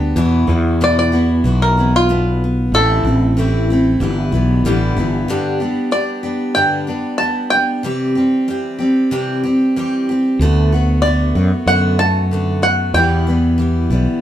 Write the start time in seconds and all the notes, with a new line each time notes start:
Already playing: D2 G3 B3 D4 G4
0.16 E2 B2 E3 B3 E4 F#4
0.47 E2 E3 B3 E4 F#4
0.81 E2 B2 E3 B3 E4 F#4 D5
0.99 D5
1.12 E3 B3 E4 F#4
1.44 B1 E3 B3 E4 F#4
1.62 A#4
1.77 E3 B3 E4 F#4
1.96 F4
2.09 E2 B2 B3
2.44 B3
2.72 A1 A2 E3 A3 C4 A4
2.76 E4
3.04 A1 C4 E4
3.08 A3
3.37 A2 E3 A3 C4 E4
3.70 A3 C4 E4
4.00 G1 E3 G3 B3 E4
4.31 B1 E3 G3 B3 E4
4.64 A1 G2 D3 E3 G3 B3 E4
4.96 G1 E3 G3 B3 E4
5.28 G2 D3 G3 B3 D4 G4
5.60 G3 B3 D4 G4
5.91 G3 B3 D4 G4 D5
6.23 G3 B3 D4 G4
6.55 G2 D3 G3 B3 D4 G4 G5
6.87 G3 B3 D4 G4
7.18 G3 B3 D4 A5
7.23 G4
7.50 B3 D4 G4 G5
7.55 G3
7.83 C3 E3 G3 C4 G4
8.15 G3 C4 G4
8.48 E3 G3 C4 G4
8.79 G3 C4 G4
9.11 C3 E3 G3 C4 G4
9.44 G3 C4 G4
9.76 E3 G3 C4 G4
10.09 G3 C4 G4
10.39 D2 D3 A3 B3 F#4
10.72 A3 B3 F#4
11.02 D3 A3 D5
11.06 B3 F#4
11.35 F#2 A3 B3 F#4
11.66 F#2 D3 A3 B3 F#5
11.71 F#4
11.99 A3 B3 F#4 A5
12.31 D3 A3 B3 F#4
12.62 A3 B3 F#4 F#5
12.94 E2 B2 E3 G3 B3 E4 G5
13.27 E3 G3 B3 E4
13.58 E3 G3 B3 E4
13.90 B1 E3 G3 B3 E4